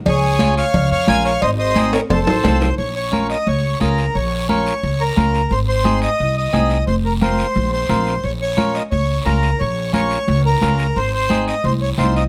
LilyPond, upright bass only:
\new Staff \with { instrumentName = "Upright bass" } { \clef bass \time 4/4 \key bes \minor \tempo 4 = 176 des,2 des,8 f,8 bes,,4 | aes,,2 f,,8 a,,8 c,4 | bes,,2 des,4 des,4 | bes,,2 des,4 des,4 |
aes,,2 c,4 c,4 | f,,2 bes,,4 bes,,4 | bes,,2 des,4 des,4 | bes,,2 des,4 des,4 |
aes,,2 c,4 c,4 | }